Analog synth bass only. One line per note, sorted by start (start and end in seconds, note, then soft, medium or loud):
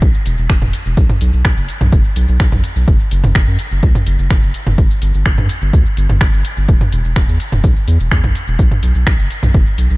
0.02 0.12 B1 loud
0.26 0.36 E1 loud
0.38 0.48 E1 medium
0.50 0.60 E1 loud
0.62 0.72 E1 medium
0.86 0.96 E1 medium
0.97 1.08 B1 loud
1.21 1.32 B1 loud
1.34 1.43 B1 medium
1.45 1.55 B1 loud
1.58 1.67 F#1 medium
1.81 1.91 B1 medium
1.93 2.03 F#1 loud
2.16 2.27 B1 loud
2.29 2.38 B1 medium
2.40 2.51 B1 loud
2.53 2.62 B1 medium
2.76 2.86 B1 medium
2.88 2.98 F#1 loud
3.12 3.22 F#1 medium
3.24 3.34 F#1 medium
3.35 3.46 F#1 loud
3.48 3.57 F#2 medium
3.72 3.81 F#1 medium
3.83 3.93 C#2 loud
4.07 4.17 F#1 medium
4.19 4.29 F#1 medium
4.31 4.41 F#1 loud
4.43 4.53 F#1 medium
4.67 4.76 F#1 medium
4.78 4.89 G1 loud
5.02 5.12 G1 loud
5.14 5.24 G1 medium
5.26 5.36 G1 loud
5.38 5.48 G2 medium
5.62 5.72 G1 medium
5.73 5.84 D2 loud
5.97 6.08 G1 loud
6.09 6.19 G1 medium
6.21 6.31 G1 loud
6.33 6.43 G1 medium
6.57 6.67 G1 medium
6.69 6.79 E1 loud
6.93 7.03 E1 loud
7.05 7.14 E1 medium
7.16 7.27 E1 loud
7.29 7.38 E2 medium
7.52 7.62 E1 medium
7.64 7.74 B1 loud
7.88 7.98 E2 loud
8.00 8.10 E1 medium
8.12 8.22 E2 loud
8.24 8.33 B1 medium
8.48 8.57 E1 medium
8.59 8.70 B1 loud
8.83 8.93 B1 loud
8.95 9.05 B1 medium
9.07 9.17 B1 loud
9.19 9.29 F#1 medium
9.43 9.52 B1 medium
9.54 9.65 F#1 loud
9.78 9.89 B1 loud
9.90 9.97 B1 medium